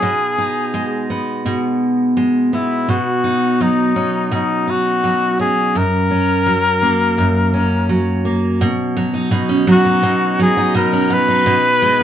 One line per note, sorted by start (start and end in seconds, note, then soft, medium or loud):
0.00 1.44 B2 medium
0.00 0.38 D#4 medium
0.00 1.05 G#4 medium
0.38 3.23 D#4 medium
0.74 2.16 G#3 medium
1.10 2.53 B3 medium
1.46 2.87 B2 medium
2.17 2.95 G#3 medium
2.53 3.96 B3 medium
2.53 2.91 E4 medium
2.89 4.30 B2 medium
2.89 3.64 F#4 medium
3.24 4.66 D#4 soft
3.60 5.03 F#3 medium
3.60 4.33 D#4 medium
3.96 5.39 C#4 medium
4.31 5.75 B2 medium
4.31 4.71 D#4 medium
4.67 5.82 D#4 medium
4.67 5.40 F#4 medium
5.04 6.46 F#3 medium
5.39 6.11 C#4 medium
5.39 5.79 G#4 medium
5.75 7.17 F#2 medium
5.75 7.91 A#4 loud
6.11 7.53 C#4 medium
6.46 7.89 F#3 medium
6.82 8.24 A#3 medium
7.18 8.68 F#2 medium
7.54 9.13 C#4 medium
7.89 8.96 F#3 medium
8.25 8.68 A#3 soft
8.61 9.30 B2 medium
8.96 9.66 F#3 medium
9.14 9.84 D#4 medium
9.31 10.02 B2 medium
9.49 10.92 C#4 medium
9.67 10.38 F#3 medium
9.71 10.37 F#4 medium
9.85 10.57 D#4 medium
10.03 10.73 B2 medium
10.39 11.09 F#3 medium
10.39 10.74 G#4 medium
10.57 11.28 D#4 medium
10.75 11.45 B2 medium
10.75 11.14 A#4 medium
10.93 11.54 C#4 medium
11.10 11.53 F#3 medium
11.10 12.03 B4 loud
11.28 12.00 D#4 medium
11.46 12.03 B2 medium
11.82 12.03 G#3 medium